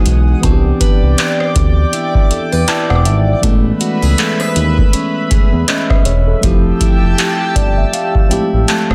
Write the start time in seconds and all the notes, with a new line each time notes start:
Already playing: E3 G#3 B3 D#4 F#4 G#4 F#5 D#6
0.06 B1, closed hi-hat
0.41 C2 E3 B3 C4 D4 D5 G5 A5 D6, kick, closed hi-hat
0.45 F#4
0.52 G4
0.81 B4, kick, closed hi-hat
1.03 C2
1.18 D5, clap, closed hi-hat
1.40 cross-stick
1.56 D2, kick, closed hi-hat
1.93 E4, closed hi-hat
2.15 kick
2.31 E2 A4, closed hi-hat
2.52 E2 B4
2.68 E4 D5 A5, clap, closed hi-hat
2.90 E1 F#5, cross-stick
2.95 D6
3.05 G#1 E5, closed hi-hat
3.28 D5
3.41 A1 E3 A3 B3 C#4 B4 E5 B5, kick, closed hi-hat
3.45 G#3
3.81 F#4, closed hi-hat
4.02 C#2 G#4
4.18 A4, clap, closed hi-hat
4.40 B4, cross-stick
4.56 D#2, closed hi-hat
4.78 kick
4.93 C#4, closed hi-hat
5.31 E2 G#4, kick, closed hi-hat
5.52 E2
5.68 C#4 D#5, clap, closed hi-hat
5.90 E5, kick, cross-stick
6.05 E1 C#5, closed hi-hat
6.27 A4
6.41 F1 F3 A3 C4 E4 G4 G5 A5 E6, kick, closed hi-hat
6.45 G4
6.81 E4, kick, closed hi-hat
7.02 F1
7.18 G4, clap, closed hi-hat
7.56 G1 D5, kick, closed hi-hat
7.78 E5
7.93 A3 F5, closed hi-hat
8.15 kick
8.29 A1 F3 G#3 C4 E4 G5, closed hi-hat
8.33 A3 G4
8.53 A1
8.68 A3 A5, clap, closed hi-hat
8.90 F1, cross-stick